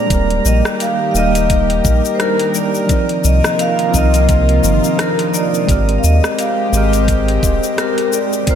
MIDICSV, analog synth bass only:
0, 0, Header, 1, 2, 480
1, 0, Start_track
1, 0, Key_signature, -3, "major"
1, 0, Tempo, 697674
1, 74, Time_signature, 4, 2, 24, 8
1, 5883, End_track
2, 0, Start_track
2, 0, Title_t, "Analog synth bass"
2, 0, Program_c, 0, 38
2, 70, Note_on_c, 0, 27, 88
2, 276, Note_off_c, 0, 27, 0
2, 313, Note_on_c, 0, 34, 99
2, 427, Note_off_c, 0, 34, 0
2, 790, Note_on_c, 0, 27, 105
2, 1243, Note_off_c, 0, 27, 0
2, 1270, Note_on_c, 0, 34, 95
2, 1385, Note_off_c, 0, 34, 0
2, 2233, Note_on_c, 0, 36, 90
2, 2347, Note_off_c, 0, 36, 0
2, 2712, Note_on_c, 0, 36, 100
2, 3164, Note_off_c, 0, 36, 0
2, 3192, Note_on_c, 0, 31, 79
2, 3306, Note_off_c, 0, 31, 0
2, 3912, Note_on_c, 0, 32, 93
2, 4116, Note_off_c, 0, 32, 0
2, 4155, Note_on_c, 0, 39, 96
2, 4268, Note_off_c, 0, 39, 0
2, 4629, Note_on_c, 0, 32, 100
2, 5082, Note_off_c, 0, 32, 0
2, 5110, Note_on_c, 0, 27, 97
2, 5225, Note_off_c, 0, 27, 0
2, 5883, End_track
0, 0, End_of_file